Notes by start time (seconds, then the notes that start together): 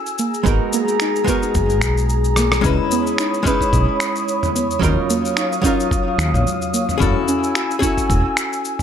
Already playing: C#4 E4 F#4 G#4 A4 G#5 E6
0.06 shaker
0.18 A#3 G#4 A#5, shaker
0.34 shaker
0.43 G#1 G#3 B3 D#4 F#4, kick, shaker
0.48 A#4
0.73 A#3, shaker
0.88 shaker
1.00 D#4, finger snap, shaker
1.16 shaker
1.24 G#3 B3 D#4 F#4, kick, shaker
1.29 B3 A#4
1.43 shaker
1.55 F#1, kick, shaker
1.70 shaker
1.81 B1, finger snap, kick, shaker
1.97 shaker
2.09 shaker
2.24 shaker
2.36 A#3, cross-stick, shaker
2.52 cross-stick, shaker
2.61 C#2 G#3 C#4 D#4 E4 C#5 B5 D#6, kick, mid tom, shaker
2.66 B4
2.91 B3, shaker
3.07 shaker
3.18 D#4, finger snap, shaker
3.34 shaker
3.43 G#3 C#4 D#4 E4, kick, shaker
3.47 B4
3.61 kick, shaker
3.73 B1, kick, shaker
4.00 finger snap, shaker
4.16 shaker
4.28 shaker
4.43 mid tom, shaker
4.55 B3, shaker
4.71 shaker
4.79 D#2 F#3 C#4 D#4 F4, kick, mid tom, shaker
4.84 A#4 F5 D#6
5.10 A#3, shaker
5.25 shaker
5.37 D#4, finger snap, shaker
5.52 shaker
5.61 F#3 C#4 D#4 F4, kick, shaker
5.66 A#4
5.80 shaker
5.91 kick, shaker
6.18 D#2, finger snap, shaker
6.34 A#1, mid tom, shaker
6.47 shaker
6.62 shaker
6.74 A#3, shaker
6.89 mid tom, shaker
6.98 F#1 C#4 E4 F#4 G#4, kick, mid tom, shaker
7.02 A4 G#5 E6
7.28 C#4, shaker
7.44 shaker
7.55 F#4, finger snap, shaker
7.71 shaker
7.79 C#4 E4 F#4 G#4, kick, shaker
7.84 A4
7.98 kick, shaker
8.10 E1, kick, shaker
8.37 finger snap, shaker
8.53 shaker
8.65 shaker
8.79 mid tom